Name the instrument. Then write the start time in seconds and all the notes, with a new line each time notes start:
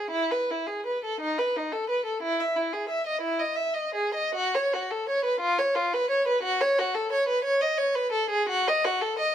violin
Already playing: G#4
0.10 E4
0.31 B4
0.51 E4
0.67 G#4
0.86 B4
1.05 A4
1.21 D#4
1.38 B4
1.57 D#4
1.73 A4
1.90 B4
2.06 A4
2.23 E4
2.40 E5
2.56 E4
2.73 G#4
2.89 E5
3.07 D#5
3.21 E4
3.39 D#5
3.56 E5
3.74 D#5
3.95 G#4
4.15 D#5
4.35 F#4
4.55 C#5
4.73 F#4
4.91 A4
5.09 C#5
5.25 B4
5.40 F4
5.59 C#5
5.76 F4
5.94 B4
6.10 C#5
6.28 B4
6.43 F#4
6.61 C#5
6.79 F#4
6.95 A4
7.13 C#5
7.29 B4
7.44 C#5
7.61 D#5
7.78 C#5
7.95 B4
8.12 A4
8.30 G#4
8.49 F#4
8.68 D#5
8.85 F#4
9.02 A4
9.19 D#5